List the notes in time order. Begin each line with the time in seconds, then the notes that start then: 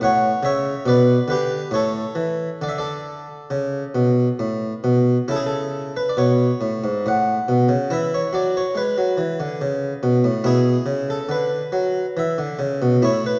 0.01 A2 C#5 F#5
0.43 C#3 C#5 E5
0.86 B2 B4 D5
1.28 D3 G4 B4
1.71 A2 A4 C#5
2.15 E3
2.62 D3 D5
2.69 E5
2.78 A4 D5
3.50 C#3
3.95 B2
4.39 A2
4.84 B2
5.28 C#3 E4 A4
5.36 G#4
5.46 A4
5.97 B4
6.09 D5
6.17 B2 C#5
6.61 A2
6.84 G#2
7.06 A2 F#5
7.48 B2
7.69 C#3
7.90 E3 E4 E5
8.14 C#5
8.33 F#3 D5
8.57 C#5
8.75 G#3 B4
8.98 F#3
9.17 E3
9.40 D3
9.61 C#3
10.03 B2
10.24 A2
10.44 B2 E4 G#4
10.86 C#3
11.10 A4
11.29 D3 B4
11.72 F#3
12.17 E3 E5
12.38 D3
12.59 C#3
12.82 B2
13.02 A2 E4 C#5
13.26 B4